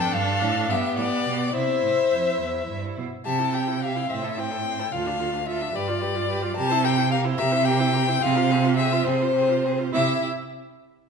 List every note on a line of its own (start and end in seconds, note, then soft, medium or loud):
0.00 0.15 F2 loud
0.00 0.71 D4 loud
0.00 0.73 A4 loud
0.00 0.15 G5 loud
0.13 0.43 G2 loud
0.13 0.72 F5 loud
0.41 0.69 A2 loud
0.69 0.78 G2 medium
0.69 1.53 B3 medium
0.69 1.54 G4 loud
0.69 0.96 E5 loud
0.96 1.05 A2 medium
0.96 1.55 D5 loud
1.26 1.54 B2 medium
1.53 1.82 C3 medium
1.53 3.02 E4 medium
1.53 2.96 C5 loud
1.53 2.80 E5 loud
1.83 1.91 A2 medium
2.11 2.39 F2 medium
2.40 2.67 E2 medium
2.68 2.96 G2 medium
2.97 3.05 B2 medium
3.25 3.99 C3 loud
3.25 3.41 G4 medium
3.25 3.41 E5 medium
3.25 3.55 A5 loud
3.39 3.54 E4 medium
3.39 3.56 G5 medium
3.53 3.69 G4 medium
3.53 3.69 E5 medium
3.53 3.84 G5 medium
3.67 3.81 E4 medium
3.67 3.81 G5 medium
3.82 3.97 G4 medium
3.82 3.97 E5 medium
3.82 4.11 F5 loud
3.96 4.08 E4 medium
3.96 4.09 G5 medium
4.09 4.83 A2 medium
4.09 4.24 C4 medium
4.09 4.26 C5 medium
4.09 4.41 E5 loud
4.23 4.38 E4 medium
4.23 4.40 A4 medium
4.37 4.52 C4 medium
4.37 4.54 C5 medium
4.37 4.93 G5 loud
4.51 4.64 E4 medium
4.51 4.66 A4 medium
4.65 4.81 C4 medium
4.65 4.80 C5 medium
4.79 4.92 E4 medium
4.79 4.93 A4 medium
4.92 5.65 D2 medium
4.92 5.07 F4 medium
4.92 5.09 A4 medium
4.92 5.47 F5 loud
5.06 5.21 D4 medium
5.06 5.22 F4 medium
5.19 5.35 F4 medium
5.19 5.36 A4 medium
5.33 5.46 D4 medium
5.33 5.47 F4 medium
5.46 5.63 F4 medium
5.46 5.62 A4 medium
5.46 5.77 E5 loud
5.61 5.74 D4 medium
5.61 5.73 F4 medium
5.74 6.47 G2 medium
5.74 5.89 G4 medium
5.74 5.90 B4 medium
5.74 6.56 D5 loud
5.88 6.03 F4 medium
5.88 6.03 D5 medium
6.01 6.17 G4 medium
6.01 6.16 B4 medium
6.15 6.29 F4 medium
6.15 6.28 D5 medium
6.28 6.44 G4 medium
6.28 6.43 B4 medium
6.42 6.56 F4 medium
6.42 6.55 D5 medium
6.56 7.29 C3 loud
6.56 6.73 G4 loud
6.56 6.70 A#4 medium
6.56 6.86 A5 loud
6.69 6.86 E4 medium
6.69 6.84 C5 loud
6.83 6.99 G4 medium
6.83 6.99 A#4 medium
6.83 7.11 G5 loud
6.97 7.10 E4 medium
6.97 7.10 C5 medium
7.11 7.26 G4 medium
7.11 7.26 A#4 medium
7.11 7.19 F5 loud
7.24 7.40 E4 medium
7.24 7.40 C5 medium
7.38 8.12 C3 loud
7.38 7.54 G4 medium
7.38 7.53 A#4 loud
7.38 7.67 E5 loud
7.51 7.65 E4 medium
7.51 7.66 C5 medium
7.65 7.81 G4 loud
7.65 7.81 A#4 medium
7.65 8.24 G5 loud
7.80 7.95 E4 loud
7.80 7.95 C5 medium
7.93 8.09 G4 medium
7.93 8.08 A#4 medium
8.07 8.21 E4 medium
8.07 8.20 C5 medium
8.20 8.96 C3 loud
8.20 8.37 C4 loud
8.20 8.38 G#4 loud
8.20 8.76 F5 loud
8.36 8.52 F4 medium
8.36 8.52 C5 loud
8.50 8.65 C4 medium
8.50 8.66 G#4 loud
8.64 8.76 F4 medium
8.64 8.77 C5 medium
8.77 8.94 C4 medium
8.77 8.94 G#4 loud
8.77 9.06 E5 loud
8.92 9.08 F4 loud
8.92 9.09 C5 medium
9.04 9.83 C3 loud
9.04 9.23 C4 medium
9.04 9.24 G#4 loud
9.04 9.93 C5 loud
9.22 9.35 F4 medium
9.22 9.35 C5 medium
9.35 9.50 C4 medium
9.35 9.52 G#4 medium
9.49 9.66 F4 medium
9.49 9.67 C5 medium
9.64 9.80 C4 medium
9.64 9.82 G#4 medium
9.79 9.91 F4 medium
9.79 9.93 C5 medium
9.92 10.25 C3 medium
9.92 10.24 E4 loud
9.92 10.25 G4 medium
9.92 10.25 E5 loud